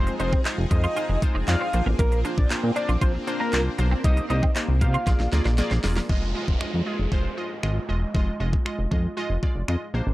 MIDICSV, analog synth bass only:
0, 0, Header, 1, 2, 480
1, 0, Start_track
1, 0, Tempo, 512821
1, 1865, Time_signature, 4, 2, 24, 8
1, 9488, End_track
2, 0, Start_track
2, 0, Title_t, "Analog synth bass"
2, 0, Program_c, 0, 38
2, 0, Note_on_c, 0, 29, 108
2, 94, Note_off_c, 0, 29, 0
2, 185, Note_on_c, 0, 29, 106
2, 335, Note_off_c, 0, 29, 0
2, 545, Note_on_c, 0, 29, 96
2, 620, Note_off_c, 0, 29, 0
2, 664, Note_on_c, 0, 41, 104
2, 815, Note_off_c, 0, 41, 0
2, 1025, Note_on_c, 0, 29, 103
2, 1100, Note_off_c, 0, 29, 0
2, 1263, Note_on_c, 0, 29, 94
2, 1339, Note_off_c, 0, 29, 0
2, 1384, Note_on_c, 0, 41, 108
2, 1459, Note_off_c, 0, 41, 0
2, 1624, Note_on_c, 0, 34, 102
2, 1699, Note_off_c, 0, 34, 0
2, 1743, Note_on_c, 0, 33, 94
2, 1819, Note_off_c, 0, 33, 0
2, 1864, Note_on_c, 0, 34, 99
2, 2089, Note_off_c, 0, 34, 0
2, 2225, Note_on_c, 0, 34, 92
2, 2300, Note_off_c, 0, 34, 0
2, 2344, Note_on_c, 0, 46, 48
2, 2392, Note_off_c, 0, 46, 0
2, 2464, Note_on_c, 0, 46, 110
2, 2540, Note_off_c, 0, 46, 0
2, 2703, Note_on_c, 0, 34, 97
2, 2779, Note_off_c, 0, 34, 0
2, 2822, Note_on_c, 0, 34, 103
2, 2973, Note_off_c, 0, 34, 0
2, 3304, Note_on_c, 0, 36, 101
2, 3455, Note_off_c, 0, 36, 0
2, 3545, Note_on_c, 0, 35, 91
2, 3695, Note_off_c, 0, 35, 0
2, 3785, Note_on_c, 0, 36, 104
2, 3935, Note_off_c, 0, 36, 0
2, 4025, Note_on_c, 0, 36, 111
2, 4175, Note_off_c, 0, 36, 0
2, 4384, Note_on_c, 0, 36, 105
2, 4505, Note_on_c, 0, 48, 107
2, 4519, Note_off_c, 0, 36, 0
2, 4655, Note_off_c, 0, 48, 0
2, 4743, Note_on_c, 0, 34, 107
2, 4819, Note_off_c, 0, 34, 0
2, 4865, Note_on_c, 0, 34, 99
2, 4940, Note_off_c, 0, 34, 0
2, 4984, Note_on_c, 0, 38, 102
2, 5059, Note_off_c, 0, 38, 0
2, 5104, Note_on_c, 0, 34, 98
2, 5255, Note_off_c, 0, 34, 0
2, 5344, Note_on_c, 0, 34, 91
2, 5419, Note_off_c, 0, 34, 0
2, 5463, Note_on_c, 0, 28, 97
2, 5614, Note_off_c, 0, 28, 0
2, 5705, Note_on_c, 0, 29, 104
2, 5930, Note_off_c, 0, 29, 0
2, 6065, Note_on_c, 0, 29, 84
2, 6140, Note_off_c, 0, 29, 0
2, 6186, Note_on_c, 0, 41, 44
2, 6234, Note_off_c, 0, 41, 0
2, 6306, Note_on_c, 0, 41, 100
2, 6381, Note_off_c, 0, 41, 0
2, 6546, Note_on_c, 0, 29, 93
2, 6621, Note_off_c, 0, 29, 0
2, 6663, Note_on_c, 0, 29, 91
2, 6813, Note_off_c, 0, 29, 0
2, 7144, Note_on_c, 0, 32, 100
2, 7295, Note_off_c, 0, 32, 0
2, 7384, Note_on_c, 0, 28, 83
2, 7534, Note_off_c, 0, 28, 0
2, 7625, Note_on_c, 0, 29, 102
2, 7775, Note_off_c, 0, 29, 0
2, 7864, Note_on_c, 0, 29, 104
2, 8015, Note_off_c, 0, 29, 0
2, 8225, Note_on_c, 0, 29, 93
2, 8300, Note_off_c, 0, 29, 0
2, 8345, Note_on_c, 0, 41, 104
2, 8495, Note_off_c, 0, 41, 0
2, 8704, Note_on_c, 0, 29, 95
2, 8779, Note_off_c, 0, 29, 0
2, 8943, Note_on_c, 0, 29, 91
2, 9019, Note_off_c, 0, 29, 0
2, 9063, Note_on_c, 0, 41, 102
2, 9139, Note_off_c, 0, 41, 0
2, 9303, Note_on_c, 0, 34, 100
2, 9378, Note_off_c, 0, 34, 0
2, 9423, Note_on_c, 0, 33, 93
2, 9488, Note_off_c, 0, 33, 0
2, 9488, End_track
0, 0, End_of_file